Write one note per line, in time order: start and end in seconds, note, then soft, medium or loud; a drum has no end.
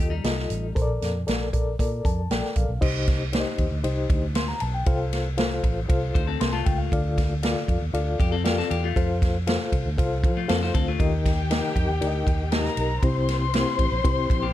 0.00 0.20 D#2 medium
0.00 0.14 F4 medium
0.00 0.14 A4 medium
0.00 0.14 D#5 medium
0.10 0.72 G3 medium
0.10 0.72 D#4 medium
0.24 0.45 C2 medium
0.24 0.66 F4 medium
0.24 0.30 G#4 medium
0.24 0.66 D#5 medium
0.24 snare medium
0.24 closed hi-hat medium
0.30 0.69 A4 medium
0.39 snare soft
0.50 0.71 A1 medium
0.50 closed hi-hat medium
0.75 0.97 A#1 medium
0.75 1.49 A#2 medium
0.75 1.17 A4 loud
0.75 1.17 A#4 medium
0.75 0.82 C5 medium
0.75 kick medium
0.75 closed hi-hat medium
0.82 1.20 D5 loud
1.02 1.23 F2 medium
1.02 snare soft
1.02 closed hi-hat medium
1.27 1.48 A#1 medium
1.27 1.48 A4 medium
1.27 1.48 A#4 medium
1.27 1.48 D5 medium
1.27 snare medium
1.27 closed hi-hat medium
1.53 1.74 A#1 medium
1.53 1.74 A4 medium
1.53 1.74 A#4 medium
1.53 1.74 D5 medium
1.53 kick medium
1.53 closed hi-hat medium
1.79 2.00 A#2 loud
1.79 2.20 A4 medium
1.79 2.20 A#4 medium
1.79 2.20 D5 medium
1.79 kick medium
1.79 closed hi-hat medium
2.04 2.26 F2 medium
2.04 2.29 A5 medium
2.04 kick medium
2.04 closed hi-hat medium
2.30 2.41 A#1 medium
2.30 2.72 A4 medium
2.30 2.72 A#4 medium
2.30 2.72 D5 medium
2.30 2.55 G5 medium
2.30 snare loud
2.30 closed hi-hat medium
2.44 snare soft
2.56 2.67 A#1 medium
2.56 2.80 F5 medium
2.56 kick medium
2.56 closed hi-hat medium
2.69 2.79 B1 medium
2.81 3.43 C2 loud
2.81 3.55 C3 medium
2.81 3.22 D#4 medium
2.81 3.23 G4 medium
2.81 3.23 C5 medium
2.81 3.23 D#5 medium
2.81 kick loud
2.81 crash loud
3.07 kick loud
3.07 snare soft
3.07 ride medium
3.33 3.74 D#4 medium
3.33 3.74 G4 medium
3.33 3.74 C5 medium
3.33 3.39 D5 medium
3.33 snare loud
3.33 ride medium
3.39 3.77 D#5 medium
3.58 3.69 D#2 medium
3.58 kick medium
3.58 ride medium
3.71 3.82 D2 medium
3.84 4.05 C2 loud
3.84 4.25 D#4 medium
3.84 4.25 G4 medium
3.84 4.25 C5 medium
3.84 4.25 D#5 medium
3.84 ride medium
4.10 4.52 D2 medium
4.10 kick loud
4.10 ride medium
4.35 4.48 C6 medium
4.35 snare loud
4.35 ride medium
4.48 4.61 A#5 medium
4.48 snare soft
4.60 4.83 B1 loud
4.60 4.73 A5 medium
4.60 ride medium
4.74 4.99 G5 medium
4.86 5.60 C2 loud
4.86 5.60 C3 medium
4.86 5.28 F4 medium
4.86 5.28 A4 medium
4.86 5.28 C5 medium
4.86 5.28 F5 loud
4.86 kick loud
4.86 ride medium
5.13 snare soft
5.13 ride medium
5.38 5.79 F4 medium
5.38 5.79 A4 medium
5.38 5.79 C5 medium
5.38 5.79 F5 medium
5.38 snare loud
5.38 ride medium
5.63 5.84 A1 loud
5.63 kick medium
5.63 ride medium
5.88 6.10 C2 loud
5.88 6.30 F4 medium
5.88 6.30 A4 medium
5.88 6.30 C5 medium
5.88 6.30 F5 medium
5.88 kick loud
5.88 ride medium
6.14 6.36 D2 medium
6.14 6.27 D#4 medium
6.14 6.27 C5 medium
6.14 kick loud
6.14 ride medium
6.27 6.52 C4 medium
6.27 6.52 A4 medium
6.41 6.61 C2 medium
6.41 6.53 C6 medium
6.41 snare loud
6.41 ride medium
6.53 6.90 A3 medium
6.53 6.90 F4 medium
6.53 6.65 A5 medium
6.66 6.87 C#2 loud
6.66 6.78 G5 medium
6.66 kick loud
6.66 ride medium
6.78 6.91 F5 medium
6.92 7.52 D2 loud
6.92 7.65 D3 medium
6.92 7.33 F4 medium
6.92 7.33 A4 medium
6.92 7.33 D5 medium
6.92 7.33 F5 medium
6.92 kick loud
6.92 ride medium
7.18 kick medium
7.18 snare soft
7.18 ride medium
7.43 7.83 F4 medium
7.43 7.83 A4 medium
7.43 7.84 D5 medium
7.43 7.84 F5 medium
7.43 snare loud
7.43 ride medium
7.68 7.79 F2 medium
7.68 kick medium
7.68 ride medium
7.81 7.92 D#2 medium
7.93 8.14 D2 loud
7.93 8.34 F4 medium
7.93 8.35 A4 medium
7.93 8.34 D5 medium
7.93 8.35 F5 medium
7.93 ride medium
8.19 8.61 F2 medium
8.19 8.32 G4 medium
8.19 kick loud
8.19 ride medium
8.32 8.45 C4 medium
8.32 8.44 A4 medium
8.44 8.85 F4 medium
8.44 8.57 G4 medium
8.44 8.85 A4 medium
8.44 8.85 D5 medium
8.44 8.85 F5 loud
8.44 snare loud
8.44 ride medium
8.58 8.71 C4 medium
8.58 8.70 A4 medium
8.58 snare soft
8.70 8.91 E2 medium
8.70 8.83 G4 medium
8.70 ride medium
8.84 9.08 A3 medium
8.84 9.08 F4 medium
8.96 9.57 F2 loud
8.96 9.37 F4 medium
8.96 9.37 A4 medium
8.96 9.37 C5 medium
8.96 9.37 F5 medium
8.96 kick loud
8.96 ride medium
9.22 kick medium
9.22 snare soft
9.22 ride medium
9.47 9.88 F4 medium
9.47 9.88 A4 medium
9.47 9.88 C5 medium
9.47 9.88 F5 medium
9.47 snare loud
9.47 ride medium
9.72 9.83 C2 medium
9.72 kick medium
9.72 ride medium
9.86 9.96 D2 medium
9.98 10.25 C2 loud
9.98 10.38 F4 medium
9.98 10.38 A4 medium
9.98 10.38 C5 medium
9.98 10.39 F5 loud
9.98 kick loud
9.98 ride medium
10.24 10.44 F3 medium
10.24 kick loud
10.24 ride medium
10.37 10.49 A3 medium
10.37 10.49 F4 medium
10.48 10.70 F2 medium
10.48 10.61 C4 medium
10.48 10.89 F4 medium
10.48 10.89 A4 medium
10.48 10.61 A4 medium
10.48 10.89 C5 medium
10.48 10.89 F5 medium
10.48 snare loud
10.48 ride medium
10.63 10.75 D#4 medium
10.63 10.74 C5 medium
10.63 snare soft
10.74 10.95 D2 medium
10.74 10.87 C4 medium
10.74 10.86 A4 medium
10.74 kick loud
10.74 ride medium
10.88 11.12 A3 medium
10.88 11.12 F4 medium
10.99 11.60 D#2 loud
10.99 11.72 D#3 medium
10.99 11.40 D#4 medium
10.99 11.40 G4 medium
10.99 12.50 G4 medium
10.99 11.40 A#4 medium
10.99 11.40 D#5 medium
10.99 12.49 G5 medium
10.99 kick loud
10.99 ride medium
11.26 kick loud
11.26 snare soft
11.26 ride medium
11.50 11.91 D#4 medium
11.50 11.91 G4 medium
11.50 11.91 A#4 medium
11.50 11.91 D#5 medium
11.50 snare loud
11.50 ride medium
11.76 11.86 F2 medium
11.76 kick medium
11.76 ride medium
11.89 11.99 D#2 medium
12.01 12.22 D2 loud
12.01 12.42 D#4 medium
12.01 12.42 G4 medium
12.01 12.42 A#4 medium
12.01 12.07 D5 medium
12.01 ride medium
12.07 12.45 D#5 medium
12.26 12.68 D#2 medium
12.26 kick loud
12.26 ride medium
12.52 12.93 D#4 medium
12.52 12.93 G4 medium
12.52 13.02 A#4 medium
12.52 12.93 A#4 medium
12.52 12.93 D#5 loud
12.52 13.02 A#5 medium
12.52 snare loud
12.52 ride medium
12.66 snare soft
12.77 12.98 B1 medium
12.77 ride medium
13.02 13.63 C2 loud
13.02 13.75 C3 medium
13.02 13.44 C4 medium
13.02 13.44 E4 medium
13.02 13.44 G4 medium
13.02 14.53 C5 medium
13.02 13.44 C5 loud
13.02 14.53 C6 loud
13.02 kick loud
13.02 ride medium
13.28 snare soft
13.28 ride medium
13.54 13.94 C4 medium
13.54 13.94 E4 medium
13.54 13.94 G4 medium
13.54 13.94 C5 medium
13.54 snare loud
13.54 ride medium
13.79 13.89 A1 medium
13.79 kick medium
13.79 ride medium
13.92 14.02 A#1 medium
14.04 14.25 C2 loud
14.04 14.45 C4 medium
14.04 14.45 E4 medium
14.04 14.45 G4 medium
14.04 14.11 B4 medium
14.04 kick loud
14.04 ride medium
14.10 14.48 C5 loud
14.30 14.51 A#1 medium
14.30 kick loud
14.30 ride medium
14.42 14.53 A#3 medium
14.42 14.53 G4 medium